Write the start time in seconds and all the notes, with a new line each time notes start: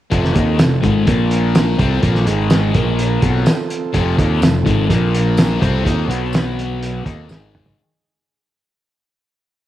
0.11 F1 F2 C3 F3 C4 F4 A4, kick, closed hi-hat
0.25 snare
0.33 D#2 D#3 A#3 D#4, kick, closed hi-hat
0.57 F1 F2 C3, snare, closed hi-hat, tambourine
0.82 G#1 G#2 D#3 G#3, kick, closed hi-hat
1.06 A#1 A#2 F3 A#3 A#4, kick, closed hi-hat
1.31 closed hi-hat
1.55 snare, closed hi-hat, tambourine
1.78 C2 C3 G3 C4 A4, kick, closed hi-hat
2.01 A#1 A#2 F3 A#3, kick, closed hi-hat
2.15 snare
2.26 G#1 G#2 D#3 G#3 D#4 G#4, closed hi-hat
2.50 snare, closed hi-hat, tambourine
2.73 A#1 A#2 F3 A#3 F4 A#4, kick, closed hi-hat
2.99 closed hi-hat
3.21 B1 B2 F#3 B3 C4 A4, kick, closed hi-hat
3.46 snare, closed hi-hat, tambourine
3.70 closed hi-hat
3.93 F1 F2 C3 F3, kick, closed hi-hat
4.18 D#2 D#3 A#3 D#4, kick, closed hi-hat
4.41 F1 F2 C3, snare, closed hi-hat, tambourine
4.65 G#1 G#2 D#3 G#3, kick, closed hi-hat
4.88 A#1 A#2 F3 A#3 A#4, kick, closed hi-hat
5.15 closed hi-hat
5.37 snare, closed hi-hat, tambourine
5.60 C2 C3 G3 C4 A4, kick, closed hi-hat
5.84 D#2 D#3 A#3 D#4, kick, closed hi-hat
6.08 B1 B2 F#3 B3 F#4 B4, closed hi-hat
6.33 snare, closed hi-hat, tambourine
6.59 closed hi-hat
6.83 closed hi-hat
7.04 D#2 D#3 A#3 C4 D#4 F4 A4, kick, closed hi-hat
7.28 G#1 G#2 D#3 G#3 D#4 G#4, snare, tambourine
7.55 mid tom
7.66 floor tom